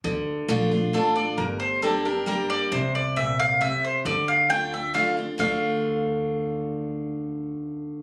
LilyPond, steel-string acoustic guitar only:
\new Staff \with { instrumentName = "Steel-string acoustic guitar" } { \time 3/4 \key d \minor \tempo 4 = 134 << { r4 <d a d' f'>8 <d' f'>8 <d a d' f'>8 <d' f'>8 | r4 <g bes d' g'>8 <d' g'>8 <g bes d' g'>4 | r2. | r4 <d a d' f'>8 <d' f'>8 <d a d' f'>8 <d' f'>8 |
<d a d' f'>2.~ | <d a d' f'>2. | } \\ { d2 r4 | g,2 r4 | c4 bes,4 c4 | d2 r4 |
r2. | r2. | } >> }